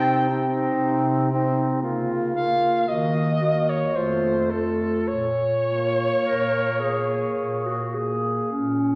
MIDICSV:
0, 0, Header, 1, 5, 480
1, 0, Start_track
1, 0, Key_signature, -5, "minor"
1, 0, Tempo, 1025641
1, 859, Time_signature, 3, 2, 24, 8
1, 859, Tempo, 1065719
1, 1819, Tempo, 1138520
1, 3921, End_track
2, 0, Start_track
2, 0, Title_t, "Soprano saxophone"
2, 0, Program_c, 0, 64
2, 0, Note_on_c, 0, 79, 67
2, 134, Note_off_c, 0, 79, 0
2, 1092, Note_on_c, 0, 77, 67
2, 1331, Note_on_c, 0, 75, 62
2, 1338, Note_off_c, 0, 77, 0
2, 1696, Note_on_c, 0, 73, 56
2, 1702, Note_off_c, 0, 75, 0
2, 1814, Note_on_c, 0, 72, 52
2, 1821, Note_off_c, 0, 73, 0
2, 2046, Note_on_c, 0, 69, 47
2, 2052, Note_off_c, 0, 72, 0
2, 2288, Note_on_c, 0, 73, 55
2, 2294, Note_off_c, 0, 69, 0
2, 3503, Note_off_c, 0, 73, 0
2, 3921, End_track
3, 0, Start_track
3, 0, Title_t, "Clarinet"
3, 0, Program_c, 1, 71
3, 0, Note_on_c, 1, 63, 49
3, 127, Note_off_c, 1, 63, 0
3, 137, Note_on_c, 1, 63, 49
3, 605, Note_off_c, 1, 63, 0
3, 614, Note_on_c, 1, 63, 43
3, 853, Note_off_c, 1, 63, 0
3, 858, Note_on_c, 1, 65, 43
3, 1093, Note_off_c, 1, 65, 0
3, 1101, Note_on_c, 1, 65, 43
3, 1328, Note_off_c, 1, 65, 0
3, 1331, Note_on_c, 1, 66, 41
3, 1570, Note_off_c, 1, 66, 0
3, 1574, Note_on_c, 1, 66, 42
3, 1812, Note_off_c, 1, 66, 0
3, 1816, Note_on_c, 1, 65, 39
3, 2045, Note_off_c, 1, 65, 0
3, 2050, Note_on_c, 1, 65, 35
3, 2287, Note_off_c, 1, 65, 0
3, 2533, Note_on_c, 1, 65, 33
3, 2726, Note_off_c, 1, 65, 0
3, 2778, Note_on_c, 1, 70, 42
3, 3014, Note_on_c, 1, 68, 44
3, 3020, Note_off_c, 1, 70, 0
3, 3371, Note_off_c, 1, 68, 0
3, 3374, Note_on_c, 1, 66, 39
3, 3494, Note_on_c, 1, 68, 36
3, 3501, Note_off_c, 1, 66, 0
3, 3733, Note_off_c, 1, 68, 0
3, 3736, Note_on_c, 1, 61, 52
3, 3921, Note_off_c, 1, 61, 0
3, 3921, End_track
4, 0, Start_track
4, 0, Title_t, "Tenor saxophone"
4, 0, Program_c, 2, 66
4, 0, Note_on_c, 2, 60, 54
4, 130, Note_off_c, 2, 60, 0
4, 140, Note_on_c, 2, 60, 49
4, 607, Note_off_c, 2, 60, 0
4, 614, Note_on_c, 2, 60, 46
4, 847, Note_off_c, 2, 60, 0
4, 850, Note_on_c, 2, 58, 44
4, 1087, Note_off_c, 2, 58, 0
4, 1090, Note_on_c, 2, 58, 44
4, 1328, Note_off_c, 2, 58, 0
4, 1331, Note_on_c, 2, 58, 41
4, 1568, Note_off_c, 2, 58, 0
4, 1571, Note_on_c, 2, 58, 41
4, 1810, Note_off_c, 2, 58, 0
4, 1815, Note_on_c, 2, 57, 35
4, 2045, Note_off_c, 2, 57, 0
4, 2048, Note_on_c, 2, 57, 34
4, 2286, Note_off_c, 2, 57, 0
4, 2526, Note_on_c, 2, 58, 35
4, 3007, Note_off_c, 2, 58, 0
4, 3018, Note_on_c, 2, 58, 35
4, 3493, Note_off_c, 2, 58, 0
4, 3505, Note_on_c, 2, 58, 29
4, 3740, Note_off_c, 2, 58, 0
4, 3921, End_track
5, 0, Start_track
5, 0, Title_t, "Bass clarinet"
5, 0, Program_c, 3, 71
5, 0, Note_on_c, 3, 48, 58
5, 319, Note_off_c, 3, 48, 0
5, 372, Note_on_c, 3, 48, 58
5, 798, Note_off_c, 3, 48, 0
5, 856, Note_on_c, 3, 49, 58
5, 1281, Note_off_c, 3, 49, 0
5, 1336, Note_on_c, 3, 51, 51
5, 1761, Note_off_c, 3, 51, 0
5, 1815, Note_on_c, 3, 41, 47
5, 2233, Note_off_c, 3, 41, 0
5, 2290, Note_on_c, 3, 46, 45
5, 2721, Note_off_c, 3, 46, 0
5, 2778, Note_on_c, 3, 46, 40
5, 3205, Note_off_c, 3, 46, 0
5, 3262, Note_on_c, 3, 46, 38
5, 3689, Note_off_c, 3, 46, 0
5, 3745, Note_on_c, 3, 46, 55
5, 3921, Note_off_c, 3, 46, 0
5, 3921, End_track
0, 0, End_of_file